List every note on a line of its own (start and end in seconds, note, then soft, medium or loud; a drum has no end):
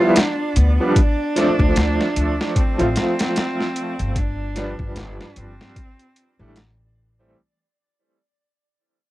0.00 0.15 F3 medium
0.00 0.16 G3 medium
0.00 0.16 B3 medium
0.00 0.16 E4 loud
0.00 0.18 F4 loud
0.00 7.38 D5 medium
0.16 0.58 D4 medium
0.16 snare loud
0.16 closed hi-hat medium
0.56 0.77 D2 medium
0.56 0.98 B3 medium
0.56 closed hi-hat medium
0.80 0.94 F3 medium
0.80 0.95 G3 medium
0.80 0.95 B3 medium
0.80 0.95 D4 medium
0.96 2.56 D4 loud
0.96 kick loud
0.96 closed hi-hat medium
1.36 2.73 F3 loud
1.36 2.74 A3 medium
1.36 2.74 C4 medium
1.36 2.75 D4 loud
1.36 snare soft
1.36 closed hi-hat medium
1.59 1.74 D2 loud
1.59 kick medium
1.76 1.97 D2 loud
1.76 snare loud
1.76 closed hi-hat medium
2.01 snare soft
2.16 2.37 D2 medium
2.16 closed hi-hat medium
2.41 snare medium
2.56 4.19 C4 loud
2.56 kick loud
2.56 closed hi-hat medium
2.78 2.94 A1 medium
2.78 4.13 F3 medium
2.78 4.14 A3 medium
2.78 4.15 C4 medium
2.78 4.15 F4 loud
2.78 closed hi-hat soft
2.96 snare loud
2.96 closed hi-hat medium
3.19 snare loud
3.19 closed hi-hat medium
3.36 snare loud
3.36 closed hi-hat medium
3.60 snare soft
3.76 closed hi-hat medium
3.99 4.75 G1 medium
3.99 closed hi-hat soft
4.16 4.96 D4 loud
4.16 kick loud
4.16 closed hi-hat medium
4.55 5.74 F3 medium
4.55 5.74 G3 medium
4.55 5.75 D4 loud
4.55 5.75 B4 medium
4.55 snare soft
4.55 closed hi-hat medium
4.79 4.94 G1 loud
4.79 kick loud
4.96 5.17 G1 loud
4.96 5.39 D4 medium
4.96 snare loud
4.96 closed hi-hat medium
5.21 snare medium
5.36 5.57 G1 medium
5.36 6.57 C4 medium
5.36 closed hi-hat medium
5.61 snare soft
5.76 kick loud
5.76 closed hi-hat medium
5.99 closed hi-hat soft
6.16 closed hi-hat medium
6.39 7.33 A1 medium
6.39 6.55 E3 medium
6.39 6.55 G3 medium
6.39 6.56 A3 medium
6.39 6.56 D4 loud
6.56 snare loud
6.56 closed hi-hat medium
7.19 7.34 E3 medium
7.19 7.34 G3 medium
7.19 7.34 A3 medium
7.19 7.35 C4 loud